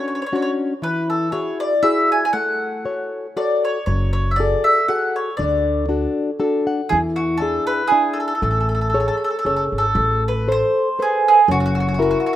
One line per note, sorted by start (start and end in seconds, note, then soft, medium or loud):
0.00 0.22 C#4 soft
0.00 0.23 D4 soft
0.00 0.23 F#4 soft
0.08 0.14 C#5 soft
0.15 0.21 C#5 soft
0.22 0.25 C#5 medium
0.26 0.34 C#5 medium
0.32 0.72 C#4 soft
0.32 0.73 D4 soft
0.32 0.73 F#4 medium
0.32 0.41 C#5 soft
0.42 0.50 C#5 medium
0.82 1.31 E3 medium
0.82 1.08 B4 medium
1.10 1.32 A4 medium
1.32 1.73 E4 soft
1.32 1.73 F#4 soft
1.32 1.73 G#4 soft
1.32 1.58 C#5 medium
1.60 1.81 D5 medium
1.83 2.23 E4 soft
1.83 2.24 F#4 soft
1.83 2.24 G#4 soft
1.83 2.11 E5 medium
2.12 2.24 G#5 medium
2.25 2.32 G#5 medium
2.33 2.83 A3 soft
2.33 3.31 F#5 medium
2.85 3.26 F#4 soft
2.85 3.26 A4 soft
2.85 3.26 C#5 medium
3.37 3.77 F#4 soft
3.37 3.78 A4 soft
3.37 3.78 C#5 soft
3.37 3.64 D5 medium
3.65 3.85 C#5 medium
3.86 4.53 F#1 medium
3.86 4.37 F#3 soft
3.86 4.12 C#5 medium
4.13 4.30 C#5 medium
4.31 4.37 E5 soft
4.36 4.79 F#4 soft
4.36 4.65 D5 medium
4.40 4.80 G#4 soft
4.40 4.80 A4 soft
4.64 4.88 E5 medium
4.88 5.29 F#4 soft
4.88 5.29 G#4 soft
4.88 5.30 A4 medium
4.88 5.14 F#5 medium
5.16 5.36 C#5 medium
5.37 6.05 D2 medium
5.37 5.88 D3 medium
5.37 5.85 D5 medium
5.89 6.30 D4 soft
5.89 6.30 F#4 soft
5.89 6.30 A4 soft
6.40 6.80 D4 soft
6.40 6.80 F#4 soft
6.40 6.66 A4 medium
6.67 6.89 F#5 medium
6.89 7.57 E2 medium
6.89 7.39 E3 medium
6.89 6.97 G#4 medium
7.16 7.38 F#4 medium
7.37 7.81 D4 soft
7.37 7.65 A4 medium
7.42 7.82 E4 soft
7.42 7.82 G#4 soft
7.67 7.89 B4 medium
7.88 8.18 G#4 medium
7.92 8.32 D4 soft
7.92 8.32 E4 soft
7.92 8.33 G#4 soft
8.13 8.19 A4 medium
8.20 8.26 A4 soft
8.28 8.34 A4 medium
8.35 8.42 A4 soft
8.42 9.08 A1 medium
8.42 8.91 A3 medium
8.42 8.49 A4 soft
8.51 8.59 A4 soft
8.60 8.68 A4 soft
8.69 8.73 A4 soft
8.75 8.80 A4 soft
8.81 8.88 A4 soft
8.90 8.99 A4 soft
8.94 9.35 G#4 soft
8.94 9.35 A4 soft
8.94 9.35 C#5 soft
9.00 9.07 A4 soft
9.08 9.16 A4 medium
9.17 9.23 A4 soft
9.24 9.29 A4 medium
9.30 9.38 A4 soft
9.39 9.45 A4 medium
9.45 9.70 F#1 medium
9.45 9.86 G#4 soft
9.45 9.86 A4 soft
9.45 9.54 A4 soft
9.45 9.86 C#5 soft
9.56 9.64 A4 medium
9.72 9.93 G#1 medium
9.78 10.23 A4 medium
9.95 10.61 A1 medium
9.95 10.46 A3 medium
10.28 10.47 B4 medium
10.48 10.88 A4 soft
10.48 10.88 C5 medium
10.52 11.01 C5 medium
10.99 11.27 G#4 medium
10.99 11.39 A4 soft
10.99 11.39 B4 soft
10.99 11.39 C5 medium
11.28 11.48 G#4 medium
11.48 12.13 F#1 medium
11.48 11.97 F#3 medium
11.48 11.57 F#4 medium
11.60 11.64 F#4 soft
11.66 11.73 F#4 medium
11.75 11.79 F#4 soft
11.80 11.86 F#4 medium
11.88 11.93 F#4 soft
11.94 12.01 F#4 soft
11.99 12.36 E4 soft
11.99 12.36 F#4 soft
11.99 12.09 F#4 soft
11.99 12.36 A#4 medium
12.11 12.18 F#4 medium
12.20 12.25 F#4 soft
12.26 12.32 F#4 medium